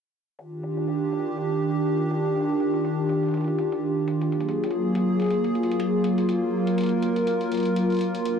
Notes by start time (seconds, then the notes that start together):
0.39 D#3 D4 F4 G4, closed hi-hat
0.63 closed hi-hat
0.77 closed hi-hat
0.88 closed hi-hat
1.13 closed hi-hat
1.19 closed hi-hat
1.37 closed hi-hat
1.51 closed hi-hat
1.86 closed hi-hat
2.11 closed hi-hat
2.25 closed hi-hat
2.35 closed hi-hat
2.40 closed hi-hat
2.44 closed hi-hat
2.49 closed hi-hat
2.52 closed hi-hat
2.56 closed hi-hat
2.60 closed hi-hat
2.74 closed hi-hat
2.85 closed hi-hat
3.09 closed hi-hat
3.23 closed hi-hat
3.26 closed hi-hat
3.28 closed hi-hat
3.31 closed hi-hat
3.34 closed hi-hat
3.37 closed hi-hat
3.41 closed hi-hat
3.44 closed hi-hat
3.48 closed hi-hat
3.59 closed hi-hat
3.72 closed hi-hat
4.08 closed hi-hat
4.21 closed hi-hat
4.32 F#3 A#3 G#4, closed hi-hat
4.40 closed hi-hat
4.49 closed hi-hat
4.64 closed hi-hat
4.71 closed hi-hat
4.95 closed hi-hat
5.20 closed hi-hat
5.22 closed hi-hat
5.24 closed hi-hat
5.26 closed hi-hat
5.28 closed hi-hat
5.30 closed hi-hat
5.44 closed hi-hat
5.55 closed hi-hat
5.63 closed hi-hat
5.71 closed hi-hat
5.80 closed hi-hat
6.04 closed hi-hat
6.18 closed hi-hat
6.29 A#4, closed hi-hat
6.67 closed hi-hat
6.78 closed hi-hat
6.81 closed hi-hat
6.83 closed hi-hat
6.86 closed hi-hat
6.89 closed hi-hat
7.02 closed hi-hat
7.16 closed hi-hat
7.27 closed hi-hat
7.41 closed hi-hat
7.52 closed hi-hat
7.54 closed hi-hat
7.57 closed hi-hat
7.60 closed hi-hat
7.63 closed hi-hat
7.65 closed hi-hat
7.76 closed hi-hat
7.90 closed hi-hat
7.92 closed hi-hat
7.94 closed hi-hat
7.97 closed hi-hat
7.99 closed hi-hat
8.01 closed hi-hat
8.15 closed hi-hat
8.25 D#3 D4 G4, closed hi-hat